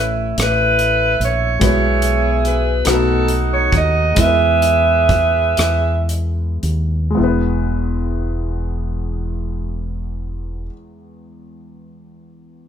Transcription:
Already playing: fingered electric bass A1, grand piano A2 A3 C#4 E4 C#5, saxophone section E4
0.38 fingered electric bass A1, saxophone section E4 B4, cross-stick, closed hi-hat
0.79 closed hi-hat
1.20 fingered electric bass A#1, saxophone section C#5, closed hi-hat
1.59 fingered electric bass B1, grand piano B2 G#3 B3 E4 B4, saxophone section C#5, kick, closed hi-hat
1.63 saxophone section E4 G#4
2.02 closed hi-hat
2.45 saxophone section B4, closed hi-hat
2.85 fingered electric bass B1, grand piano B2 A3 D#4 F#4 B4, cross-stick, closed hi-hat
2.89 saxophone section D#4 F#4 A4
3.28 closed hi-hat
3.52 saxophone section C#5
3.72 fingered electric bass D#2, saxophone section D#5, kick, closed hi-hat
4.14 fingered electric bass E2, grand piano E3 G#3 B3, kick, closed hi-hat
4.19 grand piano E4 A#4, saxophone section G#4 B4 E5
4.28 grand piano B4
4.62 closed hi-hat
5.09 kick, closed hi-hat
5.57 fingered electric bass E2, cross-stick, closed hi-hat
6.09 closed hi-hat
6.63 fingered electric bass D#2, closed hi-hat
7.10 grand piano G#3
7.15 fingered electric bass E1, grand piano E2 B3
7.19 grand piano E4
7.24 grand piano B4

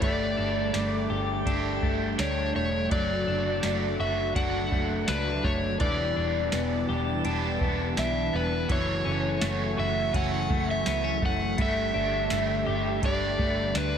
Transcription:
Already playing: string machine A3
0.01 picked electric bass G1, overdriven electric guitar G3 A3, string machine G3 D4 G4, clean electric guitar A3, electric slide guitar D5, kick, ride
0.05 overdriven electric guitar D4 G4
0.37 picked electric bass G1, clean electric guitar D4
0.74 picked electric bass G1, clean electric guitar A3, snare, ride, tambourine
0.95 synth texture G5
1.10 picked electric bass G1, clean electric guitar G4
1.46 picked electric bass G1, overdriven electric guitar G3 A3 D4, clean electric guitar D4, kick, ride
1.51 overdriven electric guitar G4
1.82 picked electric bass G1, clean electric guitar A3, kick
2.19 picked electric bass D2, clean electric guitar D4, electric slide guitar C#5, snare, ride, tambourine
2.55 picked electric bass E1, clean electric guitar A3, electric slide guitar C#5
2.90 picked electric bass F#1, string machine F#3 F#4, overdriven electric guitar F#3 A3 D4 F#4, clean electric guitar F#3, electric slide guitar D5, kick, ride
3.27 picked electric bass F#1, clean electric guitar D4
3.63 picked electric bass F#1, overdriven electric guitar F#3 A3 D4 F#4, clean electric guitar A3, snare, ride, tambourine
4.00 picked electric bass F#1, clean electric guitar F#4, electric slide guitar E5
4.34 picked electric bass F#1, overdriven electric guitar F#3 A3 D4, clean electric guitar D4, electric slide guitar F#5, kick, ride
4.40 overdriven electric guitar F#4
4.72 picked electric bass F#1, clean electric guitar A3, kick
5.08 picked electric bass C#2, clean electric guitar D4, electric slide guitar B4, snare, ride, tambourine
5.44 picked electric bass F#1, clean electric guitar A3, electric slide guitar C#5, kick
5.79 picked electric bass E1, overdriven electric guitar E3 B3, clean electric guitar E3, string machine G3 B3 E4, electric slide guitar D5, kick, ride
5.83 overdriven electric guitar D4 G4
6.16 picked electric bass E1, clean electric guitar D4
6.52 picked electric bass E1, clean electric guitar B3, synth texture A5, snare, ride, tambourine
6.89 picked electric bass E1, clean electric guitar G4
7.24 picked electric bass E1, overdriven electric guitar E3 B3, clean electric guitar D4, ride
7.28 overdriven electric guitar D4 G4
7.61 picked electric bass E1, clean electric guitar B3, kick
7.97 picked electric bass B1, clean electric guitar D4, electric slide guitar E5, snare, ride, tambourine
8.33 picked electric bass E1, clean electric guitar B3, electric slide guitar B4
8.68 picked electric bass F#1, string machine C#3 F#3 A3 E4, clean electric guitar E3, overdriven electric guitar F#3 A3 E4 F#4 C#5, electric slide guitar C#5, kick, ride
9.05 picked electric bass F#1, clean electric guitar C#4
9.41 picked electric bass F#1, overdriven electric guitar A3 E4 F#4 C#5, clean electric guitar A3, snare, ride, tambourine
9.75 picked electric bass F#1, clean electric guitar F#4, synth texture C#6
9.80 electric slide guitar E5
10.12 picked electric bass F#1, overdriven electric guitar F#3 A3 E4, clean electric guitar C#4, kick, ride
10.16 overdriven electric guitar F#4 C#5, electric slide guitar F#5
10.50 picked electric bass F#1, clean electric guitar A3, kick
10.71 electric slide guitar E5
10.86 picked electric bass C#2, clean electric guitar B3, snare, ride, tambourine
11.04 clean electric guitar C#4
11.22 picked electric bass F#1, clean electric guitar A3, electric slide guitar F#5, kick
11.58 picked electric bass G1, string machine D3 G3 G4, overdriven electric guitar G3 A3 D4 G4, clean electric guitar A3, electric slide guitar E5, kick, ride
11.93 picked electric bass G1, clean electric guitar D4, overdriven electric guitar D4 G4
11.97 overdriven electric guitar A3
12.29 picked electric bass G1, overdriven electric guitar G3 A3 D4 G4, clean electric guitar A3, snare, ride, tambourine
12.66 picked electric bass G1, clean electric guitar G4
13.00 picked electric bass G1, overdriven electric guitar G3 A3, clean electric guitar D4, kick, ride
13.05 overdriven electric guitar D4 G4, electric slide guitar D5
13.39 picked electric bass G1, clean electric guitar A3, kick
13.75 picked electric bass D2, clean electric guitar D4, electric slide guitar B4, snare, ride, tambourine

